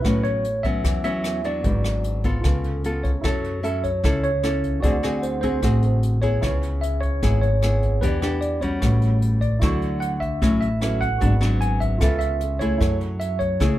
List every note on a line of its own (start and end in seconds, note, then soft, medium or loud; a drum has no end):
0.00 1.59 E4 soft
0.00 1.60 F#4 soft
0.00 0.25 B4 medium
0.04 0.80 A1 medium
0.04 0.82 A2 medium
0.04 0.44 F#3 medium
0.04 0.45 B3 medium
0.04 0.45 C#4 medium
0.04 1.61 B4 soft
0.04 1.62 C#5 soft
0.04 kick medium
0.04 cross-stick medium
0.04 closed hi-hat soft
0.24 0.65 C#5 medium
0.24 closed hi-hat soft
0.44 closed hi-hat soft
0.63 1.01 F#3 medium
0.63 1.02 B3 medium
0.63 1.02 C#4 medium
0.63 1.03 E5 medium
0.63 kick soft
0.63 closed hi-hat soft
0.84 1.66 E2 medium
0.84 1.62 E3 medium
0.84 kick medium
0.84 cross-stick medium
0.84 closed hi-hat soft
1.04 1.41 F#3 medium
1.04 1.41 B3 medium
1.04 1.41 C#4 medium
1.04 1.45 E5 medium
1.04 closed hi-hat soft
1.24 cross-stick medium
1.24 closed hi-hat soft
1.44 2.21 F#3 medium
1.44 2.21 B3 medium
1.44 2.21 D4 medium
1.44 2.27 D5 medium
1.44 closed hi-hat soft
1.62 2.40 G#1 medium
1.62 2.42 G#2 medium
1.62 2.41 F#4 soft
1.62 2.42 G#4 soft
1.62 2.43 B4 soft
1.62 kick medium
1.62 closed hi-hat soft
1.68 2.44 D5 medium
1.84 cross-stick medium
1.84 closed hi-hat soft
2.04 closed hi-hat soft
2.24 2.81 B3 medium
2.24 2.81 F4 medium
2.24 2.81 A4 medium
2.24 3.00 A4 medium
2.24 kick soft
2.24 closed hi-hat soft
2.41 3.20 C#2 medium
2.41 3.22 C#3 medium
2.41 3.21 F4 soft
2.41 kick medium
2.41 cross-stick medium
2.41 closed hi-hat soft
2.45 3.23 A4 soft
2.45 3.24 B4 soft
2.64 closed hi-hat soft
2.84 3.10 B3 medium
2.84 3.10 F4 soft
2.84 3.11 A4 medium
2.84 closed hi-hat soft
3.04 3.65 C#5 medium
3.04 kick medium
3.04 closed hi-hat soft
3.21 4.00 F#2 medium
3.21 4.02 F#3 medium
3.21 3.60 C#4 soft
3.21 4.79 E4 soft
3.21 3.61 E4 soft
3.21 3.61 A4 medium
3.21 kick medium
3.21 cross-stick medium
3.21 closed hi-hat soft
3.25 4.81 A4 soft
3.25 4.82 C#5 soft
3.44 closed hi-hat soft
3.63 3.89 C#4 soft
3.63 3.89 E4 soft
3.63 3.90 A4 medium
3.63 3.84 E5 medium
3.63 closed hi-hat soft
3.84 4.22 C#5 medium
3.84 kick soft
3.84 closed hi-hat soft
4.03 4.79 C#2 medium
4.03 4.81 C#3 medium
4.03 4.29 C#4 medium
4.03 4.29 E4 medium
4.03 4.30 A4 medium
4.03 kick medium
4.03 cross-stick medium
4.03 closed hi-hat soft
4.24 4.79 C#5 medium
4.24 closed hi-hat soft
4.43 4.82 C#4 medium
4.43 4.82 E4 medium
4.43 4.82 A4 medium
4.43 cross-stick medium
4.43 closed hi-hat soft
4.63 kick soft
4.63 closed hi-hat soft
4.80 5.59 D2 medium
4.80 5.61 D3 medium
4.80 4.95 C4 medium
4.80 5.79 F#4 soft
4.80 4.95 F#4 medium
4.80 5.80 G#4 soft
4.80 5.24 D5 medium
4.80 kick medium
4.80 closed hi-hat soft
4.85 4.96 G#4 medium
4.85 5.82 C5 soft
5.03 5.40 C4 medium
5.03 5.40 F#4 medium
5.03 5.40 G#4 medium
5.03 cross-stick medium
5.03 closed hi-hat soft
5.22 5.40 C5 medium
5.22 closed hi-hat soft
5.41 5.60 C4 medium
5.41 5.60 F#4 medium
5.41 5.60 G#4 medium
5.41 5.98 C5 medium
5.41 kick soft
5.41 closed hi-hat soft
5.62 6.39 A1 medium
5.62 6.41 A2 medium
5.62 6.20 C4 medium
5.62 6.20 F#4 soft
5.62 6.20 G#4 medium
5.62 kick medium
5.62 cross-stick medium
5.62 closed hi-hat soft
5.82 6.42 F#4 soft
5.82 6.41 G#4 soft
5.82 6.44 C5 soft
5.82 closed hi-hat soft
6.03 closed hi-hat soft
6.22 6.79 B3 medium
6.22 6.80 E4 medium
6.22 6.80 G#4 medium
6.22 6.84 C#5 medium
6.22 kick soft
6.22 closed hi-hat soft
6.41 7.19 C#2 medium
6.41 7.20 C#3 medium
6.41 7.98 E4 soft
6.41 7.99 G#4 soft
6.41 8.00 B4 soft
6.41 kick medium
6.41 cross-stick medium
6.41 closed hi-hat soft
6.47 8.01 C#5 medium
6.63 closed hi-hat soft
6.81 7.03 E5 medium
6.81 closed hi-hat soft
7.01 7.39 C#5 medium
7.01 kick soft
7.01 closed hi-hat soft
7.22 7.98 G#1 loud
7.22 8.00 G#2 medium
7.22 7.48 B3 medium
7.22 7.48 E4 medium
7.22 7.49 G#4 medium
7.22 kick medium
7.22 cross-stick medium
7.22 closed hi-hat soft
7.41 8.04 C#5 medium
7.41 closed hi-hat soft
7.62 8.01 B3 medium
7.62 8.01 E4 medium
7.62 8.01 G#4 medium
7.62 cross-stick medium
7.62 closed hi-hat soft
7.82 kick soft
7.82 closed hi-hat soft
8.01 8.78 E2 loud
8.01 8.62 E3 medium
8.01 8.19 B3 medium
8.01 8.19 D4 medium
8.01 8.80 G4 soft
8.01 8.20 G4 medium
8.01 8.39 B4 medium
8.01 8.81 B4 soft
8.01 kick medium
8.01 closed hi-hat soft
8.05 8.82 D5 soft
8.22 8.59 B3 medium
8.22 8.59 D4 medium
8.22 8.60 G4 medium
8.22 cross-stick medium
8.22 closed hi-hat soft
8.41 8.60 D5 medium
8.41 closed hi-hat soft
8.61 9.39 G3 medium
8.61 9.39 C#4 medium
8.61 9.39 F#4 medium
8.61 9.18 C#5 medium
8.61 kick soft
8.61 closed hi-hat soft
8.80 9.58 A1 loud
8.80 9.60 A2 medium
8.80 9.59 F#4 soft
8.80 kick medium
8.80 cross-stick medium
8.80 closed hi-hat soft
8.84 9.61 B4 soft
8.84 9.62 C#5 medium
9.02 closed hi-hat soft
9.22 closed hi-hat soft
9.41 9.97 D5 medium
9.41 kick soft
9.41 closed hi-hat soft
9.59 10.37 D2 loud
9.59 10.40 D3 medium
9.59 10.16 F#3 medium
9.59 10.78 E4 soft
9.59 10.79 F#4 soft
9.59 kick medium
9.59 cross-stick medium
9.59 closed hi-hat soft
9.63 10.16 E4 medium
9.63 10.80 A4 soft
9.63 10.81 C#6 soft
9.82 closed hi-hat soft
10.00 10.22 F#5 medium
10.00 closed hi-hat soft
10.20 10.59 E5 medium
10.20 kick soft
10.20 closed hi-hat soft
10.42 11.17 A1 medium
10.42 11.19 A2 medium
10.42 10.67 F#3 medium
10.42 10.68 C#4 medium
10.42 10.68 E4 medium
10.42 kick medium
10.42 cross-stick medium
10.42 closed hi-hat soft
10.61 11.02 E5 medium
10.61 closed hi-hat soft
10.80 11.08 F#3 medium
10.80 11.08 C#4 medium
10.80 11.21 E4 soft
10.80 11.09 E4 medium
10.80 11.17 F#4 soft
10.80 11.22 A4 soft
10.80 11.21 B4 soft
10.80 cross-stick medium
10.80 closed hi-hat soft
11.01 11.57 F#5 loud
11.01 kick soft
11.01 closed hi-hat soft
11.18 11.97 G#1 loud
11.18 11.99 G#2 medium
11.18 11.33 F#3 medium
11.18 11.33 B3 soft
11.18 11.33 D4 medium
11.18 11.98 F#4 soft
11.18 11.99 G#4 soft
11.18 kick medium
11.18 closed hi-hat soft
11.22 12.00 B4 soft
11.22 12.01 D5 soft
11.41 11.98 F#3 medium
11.41 11.98 B3 medium
11.41 11.98 D4 medium
11.41 cross-stick medium
11.41 closed hi-hat soft
11.61 11.80 G#5 medium
11.61 closed hi-hat soft
11.80 12.18 E5 medium
11.80 kick soft
11.80 closed hi-hat soft
11.98 12.77 C#2 medium
11.98 12.79 C#3 medium
11.98 12.41 B3 medium
11.98 12.78 F4 soft
11.98 12.41 F4 medium
11.98 12.79 A4 soft
11.98 12.41 A4 medium
11.98 12.80 B4 soft
11.98 kick medium
11.98 cross-stick medium
11.98 closed hi-hat soft
12.04 12.81 E5 medium
12.19 12.61 E5 loud
12.19 closed hi-hat soft
12.41 closed hi-hat soft
12.59 13.37 A3 medium
12.59 13.37 E4 medium
12.59 13.38 G#4 medium
12.59 12.97 C#5 medium
12.59 kick soft
12.59 closed hi-hat soft
12.78 13.56 F#2 loud
12.78 13.59 F#3 medium
12.78 13.79 E4 soft
12.78 13.79 G#4 soft
12.78 13.79 A4 soft
12.78 kick medium
12.78 cross-stick medium
12.78 closed hi-hat soft
12.83 13.79 C#5 medium
13.01 closed hi-hat soft
13.20 13.41 E5 medium
13.20 closed hi-hat soft
13.39 13.79 C#5 medium
13.39 kick soft
13.39 closed hi-hat soft
13.60 13.79 C#2 medium
13.60 13.79 C#3 medium
13.60 13.79 A3 medium
13.60 13.79 E4 medium
13.60 13.79 G#4 medium
13.60 kick medium
13.60 cross-stick medium
13.60 closed hi-hat soft